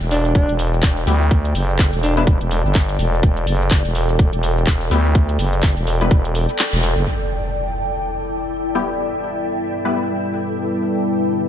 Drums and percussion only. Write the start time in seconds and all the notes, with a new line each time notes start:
0.01 closed hi-hat
0.11 open hi-hat, shaker
0.25 closed hi-hat, shaker
0.35 kick, closed hi-hat, shaker
0.49 closed hi-hat
0.59 open hi-hat, shaker
0.74 shaker
0.83 kick, clap, closed hi-hat, shaker
0.97 closed hi-hat
1.07 open hi-hat, shaker
1.22 shaker
1.31 kick, closed hi-hat, shaker
1.45 closed hi-hat
1.55 open hi-hat, shaker
1.70 shaker
1.79 kick, clap, closed hi-hat, shaker
1.93 closed hi-hat
2.03 open hi-hat, shaker
2.17 closed hi-hat, shaker
2.27 kick, closed hi-hat, shaker
2.41 closed hi-hat
2.51 open hi-hat, shaker
2.66 shaker
2.75 kick, clap, closed hi-hat, shaker
2.89 closed hi-hat
2.99 open hi-hat, shaker
3.14 shaker
3.23 kick, closed hi-hat, shaker
3.37 closed hi-hat
3.47 open hi-hat, shaker
3.62 shaker
3.71 kick, clap, closed hi-hat, shaker
3.85 closed hi-hat
3.95 open hi-hat, shaker
4.09 closed hi-hat, shaker
4.19 kick, closed hi-hat, shaker
4.33 closed hi-hat
4.43 open hi-hat, shaker
4.58 shaker
4.67 kick, clap, closed hi-hat, shaker
4.81 closed hi-hat
4.91 open hi-hat, shaker
5.06 shaker
5.15 kick, closed hi-hat, shaker
5.29 closed hi-hat
5.39 open hi-hat, shaker
5.53 closed hi-hat, shaker
5.63 kick, clap, closed hi-hat, shaker
5.77 closed hi-hat
5.87 open hi-hat, shaker
6.01 closed hi-hat, shaker
6.11 kick, closed hi-hat, shaker
6.25 closed hi-hat
6.35 open hi-hat, shaker
6.49 closed hi-hat, shaker
6.59 clap, closed hi-hat, shaker
6.73 closed hi-hat
6.83 open hi-hat, shaker
6.97 closed hi-hat, shaker